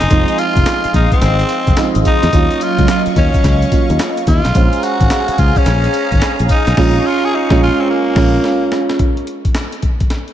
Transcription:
Already playing: D#4 G#4 C6
0.01 F#1, snare, closed hi-hat
0.10 F1 F3 G#3 C4 D#4 D#5 F5, kick, closed hi-hat, tambourine, shaker
0.28 closed hi-hat, shaker
0.38 F4, closed hi-hat, tambourine, shaker
0.56 F1, kick, closed hi-hat, shaker
0.66 snare, clap, closed hi-hat, tambourine, shaker
0.84 muted fingered electric bass stroke, closed hi-hat, shaker
0.94 A#1 D#4, kick, closed hi-hat, tambourine
1.11 C4, kick, closed hi-hat, shaker
1.22 G#1, snare, closed hi-hat, shaker
1.39 closed hi-hat, shaker
1.49 closed hi-hat, tambourine, shaker
1.67 F1, kick, closed hi-hat, shaker
1.77 F3 G#3 C4 D#4, snare, clap, closed hi-hat, tambourine, shaker
1.95 G#1, closed hi-hat, shaker
2.05 D#4, kick, closed hi-hat, tambourine, shaker
2.23 E2, snare, closed hi-hat, shaker
2.33 D#2 F#3 A#3 C#4 F4 F5 C#6, kick, closed hi-hat, tambourine, shaker
2.51 closed hi-hat, shaker
2.61 F4, closed hi-hat, tambourine, shaker
2.78 C#2, kick, closed hi-hat, shaker
2.88 F4, snare, clap, closed hi-hat, tambourine, shaker
3.06 muted fingered electric bass stroke, closed hi-hat, shaker
3.16 D#2 C#4, kick, closed hi-hat, tambourine
3.34 kick, closed hi-hat, shaker
3.44 C#2, kick, snare, closed hi-hat, shaker
3.62 closed hi-hat, shaker
3.72 F#3 A#3 C#4 F4, kick, closed hi-hat, tambourine, shaker
3.90 D#2, closed hi-hat, shaker
3.99 snare, clap, closed hi-hat, tambourine, shaker
4.17 closed hi-hat, shaker
4.27 D#2 F4, kick, closed hi-hat, tambourine, shaker
4.45 B1, snare, closed hi-hat, shaker
4.54 A#1 G#3 C#4 G#4 C5 F5 G#5 A#5, kick, closed hi-hat, tambourine, shaker
4.73 closed hi-hat, shaker
4.83 F#4, closed hi-hat, tambourine, shaker
5.00 G#1, kick, closed hi-hat, shaker
5.10 snare, clap, closed hi-hat, tambourine, shaker
5.28 muted fingered electric bass stroke, closed hi-hat, shaker
5.38 C#2 F4, kick, closed hi-hat, tambourine
5.56 C#4, kick, closed hi-hat, shaker
5.66 A#1, snare, closed hi-hat, shaker
5.83 closed hi-hat, shaker
5.93 closed hi-hat, tambourine, shaker
6.11 G#1, kick, closed hi-hat, shaker
6.21 snare, clap, closed hi-hat, tambourine, shaker
6.39 A#1, closed hi-hat, shaker
6.49 D#4, kick, closed hi-hat, tambourine, shaker
6.66 B1, snare, closed hi-hat, shaker
6.76 A#1 G#3 C#4 F4 G#4 C#6, kick, snare, crash
7.06 F4
7.25 G#4
7.35 D#4
7.50 A#1 G#3 C#4 F4, kick, snare
7.63 F4
7.81 C4
7.90 A#3
8.16 A#1 G#3 C#4 F4, kick, snare, crash
8.44 snare
8.72 snare
8.89 snare
8.99 kick, closed hi-hat
9.17 closed hi-hat
9.27 closed hi-hat
9.45 kick, closed hi-hat
9.55 snare, clap, closed hi-hat
9.72 closed hi-hat
9.82 kick, closed hi-hat
10.00 kick, closed hi-hat
10.10 snare, closed hi-hat
10.28 closed hi-hat

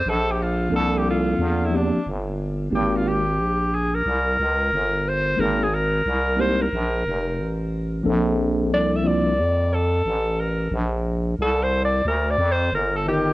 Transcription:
Already playing: C5
0.06 A#1 A4
0.31 G4
0.42 F4
0.69 C2 F3 A#3 C4 D4 A4
0.76 A4
0.98 G4
1.10 F4
1.39 E2
1.65 E4
1.70 F3 A#3 C4 D4 G4
1.76 D4
1.94 G1
2.06 G1
2.70 G#1 G#3 A#3 C4 D#4 G4
2.75 G4
2.97 F4
3.08 G4
3.39 A#1
3.75 G#4
3.95 A#4
4.06 C2
4.39 C#2
4.72 G1
5.08 C5
5.36 G#1 G#3 A#3 C4 D#4 G#4 A#4
5.63 G#4
5.74 A#4
6.06 C2
6.36 G#3 A#3 C4 D#4 G4
6.40 C5
6.62 A#4
6.73 A#1
7.06 F1
7.39 A1
8.03 A#1 F3 A#3 C4 D4 A4
8.73 C2 D5
8.96 E5
9.03 F3 A#3 C4 D4 F4
9.07 D5
9.39 F2
9.74 A4
10.05 A1
10.40 A#4
10.72 A#1
11.39 C2 A4
11.63 C5
11.85 D5
12.05 D2 A#4
12.31 D5
12.38 F2
12.52 C5
12.72 G1 A#4
12.96 A4
13.06 D#3 G4

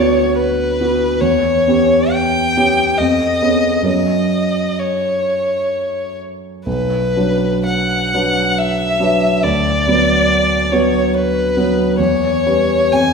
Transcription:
Already playing: D2 C#5
0.00 B3 F#4
0.38 B4
0.81 B3 F#4
1.20 E2 C#5
1.67 B3 C#4 G4
2.12 G5
2.57 B3 C#4 G4
2.98 F2 D#5
3.42 B3 C#4 G#4
3.82 F#2 F#3 C#4 A#4
3.88 D#5
4.79 C#5
6.66 B1 B4
7.16 F#3 D4 B4
7.66 F#5
8.14 F#3 D4 B4
8.58 E5
9.00 F#3 D4 B4
9.43 D2 D5
9.87 F#3 B3 B4
10.72 F#3 B3 B4 C#5
11.13 B4
11.57 F#3 B3 B4
11.99 E2 C#5
12.46 G3 C#4 B4
12.92 F2 G#5

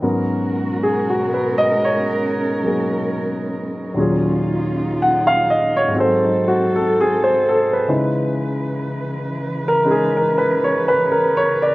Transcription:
Already playing: C#5
0.02 G#2 B2 F#3 G#3 B3 C#4 F#4 A#4
0.83 G#4
1.10 F#4
1.34 B4
1.58 D#5
1.85 C#5
2.63 F#3 A#3 G#4
3.94 D#2 A#2 F#3 C#4 D#4 F4
4.00 G#4
5.02 F#5
5.27 F5
5.50 D#5
5.77 C#5
5.88 G#2 G#3
5.93 C4 F#4 A4
5.98 A4 C5
6.24 D#4
6.48 F#4
6.76 A4
7.01 G#4
7.24 C5
7.49 A4
7.73 B4
7.88 C#3 E3 G#3 D#4 E4 B4
9.68 A#4
9.84 G#3 C#4 D#4 G#4
9.91 G#4
10.17 A#4
10.38 B4
10.64 C#5
10.88 B4
11.12 A#4
11.37 C#5
11.62 D5

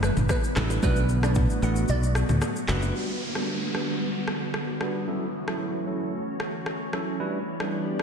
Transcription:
Already playing: D3 E3 G3 B3 E4
0.03 B4, cross-stick, shaker
0.17 G1, mid tom, low bongo, shaker
0.29 B4, kick, cross-stick, high bongo, shaker
0.44 shaker
0.56 A1 G3 D4 E4 A4 B4, cross-stick, clap, low bongo, low conga, shaker
0.70 high bongo, shaker
0.82 B1 F#3 A3 B3 D4 F#4 B4, kick, low conga, shaker
0.96 shaker
1.09 low bongo, shaker
1.23 A3 D4 F#4 B4 D5, cross-stick, low bongo, shaker
1.35 kick, mid tom, high bongo, shaker
1.50 shaker
1.62 A1 A3 D4 F#4 B4 F#5, shaker
1.76 shaker
1.88 B1 D5, low conga, shaker
2.03 shaker
2.15 cross-stick, shaker
2.29 D2, mid tom, low bongo, shaker
2.41 cross-stick, high bongo, shaker
2.56 shaker
2.68 F#1 A3 D4 F#4 B4, cross-stick, clap, low bongo, low conga, shaker
2.82 high bongo, shaker
2.95 D3 G3 B3 D4 F#4 B4, downlifter
3.35 G3 D4 F#4 B4, cross-stick
3.74 G3 D4 F#4 B4, cross-stick
4.28 cross-stick
4.54 cross-stick
4.81 G3 D4 F#4 B4, cross-stick
5.07 E3 F#3 A3 C#4 E4 F#4 A4 C#5
5.48 F#3 C#4 E4 A4, cross-stick
5.87 F#3 C#4 E4 A4
6.40 cross-stick
6.66 cross-stick
6.93 F#3 C#4 E4 A4, cross-stick
7.20 G3 B3 D4 E4 G4 B4 D5
7.60 G3 D4 E4 B4, cross-stick
7.99 G3 D4 E4, cross-stick

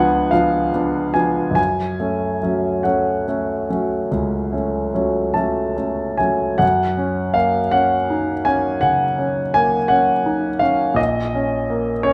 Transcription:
Already playing: C#2 F3 B3 D4 F#5 G#5
0.31 F3 B3 D4 F5
0.73 B3 D4
1.14 F3 B3 D4 G#5
1.51 F#2
1.55 G#5
2.00 A3 C#4
2.43 F#3 A3 C#4
2.83 F#3 A3 C#4 F#5
3.28 A3 C#4
3.70 F#3 A3 C#4
4.11 C#2
4.52 A3 C#4
4.94 F#3 A3 C#4
5.34 F#3 A3 C#4 A5
5.77 A3 C#4
6.17 F#3 A3 C#4 G#5
6.58 F#2 F#5
6.97 C#4
7.34 A#3 F5
7.71 C#4 F#5
8.10 D#4
8.45 C#4 G#5
8.81 C#3 F#5
9.19 C#4
9.54 A#3 G#5
9.88 C#4 F#5
10.26 D#4
10.59 C#4 F5
10.94 A#1 D#5
11.35 C#4
11.70 A#3
12.03 C#4 C#5

